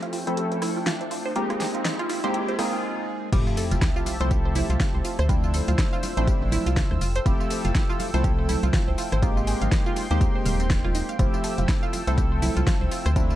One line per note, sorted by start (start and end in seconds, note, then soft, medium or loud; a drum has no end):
0.00 0.24 F3 medium
0.00 1.33 F3 medium
0.00 0.24 A3 medium
0.00 1.34 A3 medium
0.00 0.24 C4 medium
0.00 0.24 E4 medium
0.00 0.08 F4 loud
0.00 0.24 G4 loud
0.00 1.32 E5 medium
0.00 2.79 G5 medium
0.00 closed hi-hat soft
0.00 riser medium
0.13 0.24 F4 medium
0.13 open hi-hat loud
0.27 1.33 F3 loud
0.27 1.33 A3 medium
0.27 1.33 C4 medium
0.27 1.33 E4 medium
0.27 1.33 A4 loud
0.27 0.32 C5 loud
0.27 closed hi-hat medium
0.37 0.42 G4 medium
0.37 closed hi-hat medium
0.52 0.57 C5 medium
0.52 closed hi-hat soft
0.62 0.69 E4 loud
0.62 cross-stick medium
0.62 open hi-hat loud
0.76 0.80 F4 medium
0.86 0.91 F4 medium
0.86 snare loud
0.86 closed hi-hat medium
1.01 1.09 C5 medium
1.01 closed hi-hat soft
1.11 1.22 F4 medium
1.11 open hi-hat loud
1.25 1.31 C5 loud
1.36 2.82 G#3 medium
1.36 2.20 G#3 medium
1.36 2.20 A#3 medium
1.36 2.82 C4 medium
1.36 2.20 C4 medium
1.36 2.20 D#4 medium
1.36 1.40 F4 medium
1.36 2.20 G4 loud
1.36 closed hi-hat medium
1.50 1.58 F4 medium
1.50 cross-stick medium
1.50 closed hi-hat soft
1.60 1.72 G#4 medium
1.60 snare medium
1.60 open hi-hat loud
1.75 1.78 F4 medium
1.75 closed hi-hat medium
1.85 1.92 D#4 medium
1.85 snare loud
1.85 closed hi-hat medium
1.99 2.05 F4 loud
1.99 closed hi-hat soft
2.09 2.21 F4 medium
2.09 open hi-hat loud
2.24 2.57 G#3 loud
2.24 2.57 A#3 medium
2.24 2.57 C4 medium
2.24 2.57 D#4 medium
2.24 2.57 G4 loud
2.24 2.29 C5 loud
2.24 closed hi-hat medium
2.34 2.39 G4 medium
2.34 closed hi-hat medium
2.49 2.54 C5 medium
2.49 closed hi-hat soft
2.59 3.30 G#3 medium
2.59 3.30 A#3 medium
2.59 3.30 C4 medium
2.59 3.30 D#4 medium
2.59 3.30 G#4 loud
2.59 2.66 F5 medium
2.59 cross-stick medium
2.59 open hi-hat loud
2.73 2.76 C4 medium
3.32 3.43 F1 loud
3.32 4.17 F3 medium
3.32 4.17 A3 medium
3.32 4.17 C4 medium
3.32 4.17 E4 medium
3.32 3.37 F4 medium
3.32 5.27 G4 medium
3.32 4.17 G4 medium
3.32 5.27 E5 medium
3.32 5.27 A5 medium
3.32 kick loud
3.32 closed hi-hat medium
3.32 crash loud
3.32 tambourine soft
3.32 sub drop medium
3.32 muted conga soft
3.47 3.55 F4 medium
3.47 tambourine soft
3.57 3.68 A4 medium
3.57 open hi-hat loud
3.57 tambourine medium
3.71 3.79 F1 medium
3.71 3.75 F4 medium
3.71 closed hi-hat medium
3.71 tambourine soft
3.71 high conga medium
3.82 3.89 E4 medium
3.82 kick loud
3.82 snare loud
3.82 closed hi-hat medium
3.82 tambourine soft
3.96 4.01 F4 loud
3.96 tambourine soft
4.06 4.18 F4 medium
4.06 open hi-hat loud
4.06 tambourine medium
4.06 muted conga medium
4.21 4.63 C2 loud
4.21 5.27 F3 loud
4.21 5.27 A3 medium
4.21 5.27 C4 medium
4.21 5.27 E4 medium
4.21 5.27 A4 loud
4.21 4.26 C5 loud
4.21 closed hi-hat medium
4.21 tambourine soft
4.31 4.35 G4 medium
4.31 kick loud
4.31 closed hi-hat medium
4.31 tambourine soft
4.45 4.51 C5 medium
4.55 4.63 E4 loud
4.55 open hi-hat loud
4.55 tambourine medium
4.55 muted conga soft
4.55 high conga medium
4.55 low conga medium
4.70 4.77 C2 medium
4.70 4.73 F4 medium
4.70 closed hi-hat medium
4.70 tambourine soft
4.70 high conga medium
4.80 4.85 F4 medium
4.80 kick loud
4.80 snare loud
4.80 closed hi-hat medium
4.80 tambourine soft
4.80 low conga loud
4.94 5.02 C2 loud
4.94 5.02 C5 medium
4.94 muted conga medium
5.05 5.16 F4 medium
5.05 open hi-hat loud
5.05 tambourine medium
5.19 5.61 D2 loud
5.19 5.24 C5 loud
5.19 cross-stick medium
5.19 closed hi-hat medium
5.19 tambourine soft
5.29 6.14 F3 medium
5.29 6.14 A3 medium
5.29 6.14 C4 medium
5.29 6.14 D4 medium
5.29 6.14 E4 loud
5.29 5.34 F4 medium
5.29 7.00 C5 medium
5.29 9.19 E6 medium
5.29 kick loud
5.29 closed hi-hat medium
5.29 tambourine soft
5.29 muted conga soft
5.44 5.52 F4 medium
5.44 tambourine soft
5.54 5.65 A4 medium
5.54 open hi-hat loud
5.54 tambourine medium
5.68 5.75 D2 medium
5.68 5.71 F4 medium
5.68 closed hi-hat medium
5.68 tambourine soft
5.68 high conga medium
5.78 5.86 E4 medium
5.78 kick loud
5.78 snare loud
5.78 closed hi-hat medium
5.78 tambourine soft
5.93 5.98 F4 loud
5.93 tambourine soft
6.03 6.14 F4 medium
6.03 open hi-hat loud
6.03 tambourine medium
6.03 muted conga medium
6.17 6.34 A1 loud
6.17 7.00 F3 loud
6.17 7.00 A3 medium
6.17 7.00 C4 medium
6.17 7.00 D4 medium
6.17 7.00 E4 loud
6.17 6.23 C5 loud
6.17 closed hi-hat medium
6.17 tambourine soft
6.27 6.32 G4 medium
6.27 kick loud
6.27 closed hi-hat medium
6.27 tambourine soft
6.42 6.58 A1 loud
6.42 6.47 C5 medium
6.51 6.60 E4 loud
6.51 open hi-hat loud
6.51 tambourine medium
6.51 high conga loud
6.51 low conga loud
6.66 6.83 C2 medium
6.66 6.70 F4 medium
6.66 closed hi-hat medium
6.66 tambourine soft
6.76 6.81 F4 medium
6.76 kick loud
6.76 snare loud
6.76 closed hi-hat medium
6.76 tambourine soft
6.76 low conga loud
6.91 6.98 D2 medium
6.91 6.99 C5 medium
6.91 cross-stick medium
6.91 muted conga medium
6.91 high conga medium
7.01 7.20 F1 medium
7.01 7.13 F4 medium
7.01 9.20 A4 medium
7.01 13.12 G5 medium
7.01 open hi-hat loud
7.01 tambourine medium
7.16 7.21 C5 loud
7.16 closed hi-hat medium
7.16 tambourine soft
7.26 7.36 F1 loud
7.26 8.11 F3 medium
7.26 8.11 A3 medium
7.26 8.11 C4 medium
7.26 8.11 E4 medium
7.26 7.30 F4 medium
7.26 8.11 G4 loud
7.26 kick loud
7.26 closed hi-hat medium
7.26 tambourine soft
7.26 muted conga soft
7.40 7.48 F4 medium
7.40 tambourine soft
7.50 7.62 A4 medium
7.50 open hi-hat loud
7.50 tambourine medium
7.64 7.72 F1 medium
7.64 7.68 F4 medium
7.64 closed hi-hat medium
7.64 tambourine soft
7.64 high conga medium
7.75 7.83 E4 medium
7.75 kick loud
7.75 snare loud
7.75 closed hi-hat medium
7.75 tambourine soft
7.90 7.95 F4 loud
7.90 tambourine soft
8.00 8.11 F4 medium
8.00 open hi-hat loud
8.00 tambourine medium
8.00 muted conga medium
8.14 8.57 C2 medium
8.14 9.20 F3 loud
8.14 9.20 A3 medium
8.14 9.20 C4 medium
8.14 9.20 E4 medium
8.14 9.20 A4 loud
8.14 8.19 C5 loud
8.14 closed hi-hat medium
8.14 tambourine soft
8.24 8.29 G4 medium
8.24 kick loud
8.24 closed hi-hat medium
8.24 tambourine soft
8.39 8.44 C5 medium
8.49 8.56 E4 loud
8.49 open hi-hat loud
8.49 tambourine medium
8.49 muted conga soft
8.49 high conga medium
8.49 low conga medium
8.63 8.70 C2 medium
8.63 8.66 F4 medium
8.63 closed hi-hat medium
8.63 tambourine soft
8.63 high conga medium
8.73 8.78 F4 medium
8.73 kick loud
8.73 snare loud
8.73 closed hi-hat medium
8.73 tambourine soft
8.73 low conga medium
8.88 8.95 C2 medium
8.88 8.96 C5 medium
8.88 muted conga medium
8.98 9.09 F4 medium
8.98 open hi-hat loud
8.98 tambourine medium
9.12 9.55 G#1 loud
9.12 9.18 C5 loud
9.12 cross-stick medium
9.12 closed hi-hat medium
9.12 tambourine soft
9.22 10.07 G#3 medium
9.22 11.17 G#3 medium
9.22 10.07 A#3 medium
9.22 10.07 C4 medium
9.22 10.07 D#4 medium
9.22 9.27 F4 medium
9.22 10.07 G4 loud
9.22 11.17 C6 medium
9.22 kick loud
9.22 closed hi-hat soft
9.22 tambourine soft
9.22 muted conga soft
9.37 9.45 F4 medium
9.37 tambourine soft
9.47 9.58 G#4 medium
9.47 open hi-hat loud
9.47 tambourine medium
9.61 9.69 G#1 medium
9.61 9.65 F4 medium
9.61 closed hi-hat medium
9.61 tambourine soft
9.61 high conga medium
9.72 9.79 D#4 medium
9.72 kick loud
9.72 snare loud
9.72 closed hi-hat soft
9.72 tambourine soft
9.86 9.92 F4 loud
9.86 tambourine soft
9.96 10.08 F4 medium
9.96 open hi-hat loud
9.96 tambourine medium
9.96 muted conga medium
10.11 10.27 D#2 loud
10.11 11.17 G#3 loud
10.11 11.17 A#3 medium
10.11 11.17 C4 medium
10.11 11.17 D#4 medium
10.11 11.17 G4 loud
10.11 10.16 C5 loud
10.11 closed hi-hat medium
10.11 tambourine soft
10.21 10.26 G4 medium
10.21 kick loud
10.21 closed hi-hat medium
10.21 tambourine soft
10.35 10.41 C5 medium
10.45 11.02 D#1 loud
10.45 10.53 F5 medium
10.45 open hi-hat loud
10.45 tambourine medium
10.45 high conga loud
10.45 low conga medium
10.60 10.63 C4 medium
10.60 closed hi-hat medium
10.60 tambourine soft
10.70 10.81 C5 medium
10.70 kick loud
10.70 snare loud
10.70 closed hi-hat medium
10.70 tambourine soft
10.70 low conga medium
10.84 10.90 F4 loud
10.84 cross-stick medium
10.84 muted conga soft
10.84 high conga medium
10.95 11.02 D#4 medium
10.95 open hi-hat loud
10.95 tambourine medium
11.09 11.12 F5 medium
11.09 closed hi-hat medium
11.09 tambourine soft
11.19 11.29 F1 loud
11.19 12.04 F3 medium
11.19 12.04 A3 medium
11.19 12.04 C4 medium
11.19 12.04 E4 medium
11.19 11.24 F4 medium
11.19 12.04 G4 loud
11.19 13.14 A4 medium
11.19 13.36 E6 medium
11.19 kick loud
11.19 closed hi-hat medium
11.19 tambourine soft
11.19 muted conga soft
11.34 11.42 F4 medium
11.34 tambourine soft
11.44 11.55 A4 medium
11.44 open hi-hat loud
11.44 tambourine medium
11.58 11.66 F1 medium
11.58 11.61 F4 medium
11.58 closed hi-hat medium
11.58 tambourine soft
11.58 high conga medium
11.68 11.76 E4 medium
11.68 kick loud
11.68 snare loud
11.68 closed hi-hat medium
11.68 tambourine soft
11.83 11.88 F4 loud
11.83 tambourine soft
11.93 12.04 F4 medium
11.93 open hi-hat loud
11.93 tambourine medium
11.93 muted conga soft
12.07 12.50 C2 loud
12.07 13.14 F3 loud
12.07 13.14 A3 medium
12.07 13.14 C4 medium
12.07 13.14 E4 medium
12.07 13.14 A4 loud
12.07 12.13 C5 loud
12.07 closed hi-hat medium
12.07 tambourine soft
12.18 12.22 G4 medium
12.18 kick loud
12.18 closed hi-hat medium
12.18 tambourine soft
12.32 12.37 C5 medium
12.42 12.50 E4 loud
12.42 open hi-hat loud
12.42 tambourine medium
12.42 muted conga soft
12.42 high conga medium
12.42 low conga medium
12.56 12.64 C2 medium
12.56 12.60 F4 medium
12.56 closed hi-hat medium
12.56 tambourine soft
12.56 high conga medium
12.67 12.71 F4 medium
12.67 kick loud
12.67 snare loud
12.67 closed hi-hat medium
12.67 tambourine soft
12.67 low conga medium
12.81 12.88 C2 medium
12.81 12.89 C5 medium
12.81 muted conga medium
12.91 13.03 F4 medium
12.91 open hi-hat loud
12.91 tambourine medium
13.06 13.36 D2 loud
13.06 13.11 C5 loud
13.06 cross-stick medium
13.06 closed hi-hat medium
13.06 tambourine soft
13.16 13.36 F3 medium
13.16 13.36 A3 medium
13.16 13.36 C4 medium
13.16 13.36 D4 medium
13.16 13.36 E4 loud
13.16 13.21 F4 medium
13.16 13.36 C5 medium
13.16 kick loud
13.16 closed hi-hat medium
13.16 tambourine soft
13.16 muted conga soft
13.30 13.36 F4 medium
13.30 tambourine soft